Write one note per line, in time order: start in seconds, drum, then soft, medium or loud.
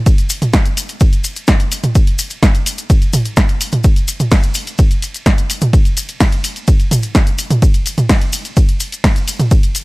0.06 kick loud
0.06 closed hi-hat medium
0.06 ride medium
0.06 maracas medium
0.18 closed hi-hat medium
0.18 maracas soft
0.30 open hi-hat loud
0.30 maracas medium
0.42 closed hi-hat medium
0.42 mid tom medium
0.42 maracas soft
0.53 kick loud
0.53 snare loud
0.53 closed hi-hat medium
0.53 ride medium
0.53 maracas medium
0.65 closed hi-hat medium
0.65 maracas soft
0.77 open hi-hat loud
0.77 maracas medium
0.89 closed hi-hat medium
0.89 maracas soft
1.00 kick loud
1.00 closed hi-hat medium
1.00 ride medium
1.00 maracas medium
1.13 closed hi-hat medium
1.13 maracas soft
1.24 open hi-hat loud
1.24 maracas medium
1.36 closed hi-hat medium
1.36 maracas soft
1.47 kick loud
1.47 snare loud
1.47 closed hi-hat medium
1.47 ride medium
1.47 maracas medium
1.60 closed hi-hat medium
1.60 maracas soft
1.72 open hi-hat loud
1.72 maracas loud
1.83 closed hi-hat medium
1.83 mid tom medium
1.83 maracas soft
1.95 kick loud
1.95 closed hi-hat medium
1.95 ride medium
1.95 maracas medium
2.07 closed hi-hat medium
2.07 maracas soft
2.19 open hi-hat loud
2.19 maracas loud
2.30 closed hi-hat medium
2.30 maracas soft
2.43 kick loud
2.43 snare loud
2.43 closed hi-hat medium
2.43 ride medium
2.43 maracas medium
2.55 closed hi-hat medium
2.55 maracas soft
2.66 open hi-hat loud
2.66 maracas loud
2.78 closed hi-hat medium
2.78 maracas soft
2.90 kick loud
2.90 closed hi-hat medium
2.90 ride medium
2.90 maracas medium
3.02 closed hi-hat soft
3.02 maracas soft
3.13 mid tom medium
3.13 open hi-hat loud
3.13 maracas loud
3.25 closed hi-hat medium
3.25 maracas soft
3.37 kick loud
3.37 snare loud
3.37 closed hi-hat medium
3.37 ride medium
3.37 maracas medium
3.49 closed hi-hat medium
3.49 maracas soft
3.61 open hi-hat loud
3.61 maracas loud
3.72 closed hi-hat medium
3.72 mid tom medium
3.72 maracas soft
3.84 kick loud
3.84 closed hi-hat medium
3.84 ride medium
3.84 maracas medium
3.96 closed hi-hat medium
3.96 maracas soft
4.08 open hi-hat loud
4.08 maracas medium
4.20 closed hi-hat medium
4.20 mid tom medium
4.20 maracas soft
4.31 kick loud
4.31 snare loud
4.31 closed hi-hat medium
4.31 ride medium
4.31 maracas medium
4.43 closed hi-hat medium
4.43 maracas soft
4.54 open hi-hat loud
4.54 maracas medium
4.67 closed hi-hat medium
4.67 maracas soft
4.78 kick loud
4.78 closed hi-hat medium
4.78 ride medium
4.78 maracas medium
4.91 closed hi-hat soft
4.91 maracas soft
5.02 open hi-hat loud
5.02 maracas medium
5.14 closed hi-hat medium
5.14 maracas soft
5.26 kick loud
5.26 snare loud
5.26 closed hi-hat medium
5.26 ride medium
5.26 maracas medium
5.38 closed hi-hat medium
5.38 maracas soft
5.50 open hi-hat loud
5.50 maracas loud
5.61 closed hi-hat medium
5.61 mid tom medium
5.61 maracas soft
5.73 kick loud
5.73 closed hi-hat medium
5.73 ride medium
5.73 maracas medium
5.85 closed hi-hat medium
5.85 maracas soft
5.97 open hi-hat loud
5.97 maracas loud
6.09 closed hi-hat medium
6.09 maracas soft
6.20 kick loud
6.20 snare loud
6.20 closed hi-hat medium
6.20 ride medium
6.20 maracas medium
6.32 closed hi-hat medium
6.32 maracas soft
6.44 open hi-hat loud
6.44 maracas medium
6.56 closed hi-hat medium
6.56 maracas soft
6.68 kick loud
6.68 closed hi-hat medium
6.68 ride medium
6.68 maracas medium
6.80 closed hi-hat medium
6.80 maracas soft
6.91 mid tom loud
6.91 open hi-hat loud
6.91 maracas medium
7.03 closed hi-hat medium
7.03 maracas soft
7.15 kick loud
7.15 snare loud
7.15 closed hi-hat medium
7.15 ride medium
7.15 maracas medium
7.27 closed hi-hat medium
7.27 maracas soft
7.38 open hi-hat loud
7.38 maracas loud
7.51 closed hi-hat medium
7.51 mid tom medium
7.51 maracas soft
7.62 kick loud
7.62 closed hi-hat medium
7.62 ride medium
7.62 maracas soft
7.74 closed hi-hat medium
7.74 maracas soft
7.86 open hi-hat loud
7.86 maracas medium
7.98 closed hi-hat medium
7.98 mid tom medium
7.98 maracas soft
8.09 kick loud
8.09 snare loud
8.09 closed hi-hat medium
8.09 ride medium
8.09 maracas medium
8.21 closed hi-hat medium
8.21 maracas soft
8.33 open hi-hat loud
8.33 maracas medium
8.45 closed hi-hat medium
8.45 maracas soft
8.57 kick loud
8.57 closed hi-hat medium
8.57 ride medium
8.57 maracas medium
8.68 closed hi-hat medium
8.68 maracas soft
8.80 open hi-hat loud
8.80 maracas medium
8.92 closed hi-hat medium
8.92 maracas soft
9.04 kick loud
9.04 snare loud
9.04 closed hi-hat medium
9.04 ride medium
9.04 maracas soft
9.16 closed hi-hat medium
9.16 maracas soft
9.28 open hi-hat medium
9.28 maracas medium
9.39 closed hi-hat medium
9.39 mid tom medium
9.39 maracas soft
9.51 kick loud
9.51 closed hi-hat medium
9.51 ride medium
9.51 maracas soft
9.63 closed hi-hat medium
9.63 maracas soft
9.75 open hi-hat loud
9.75 maracas medium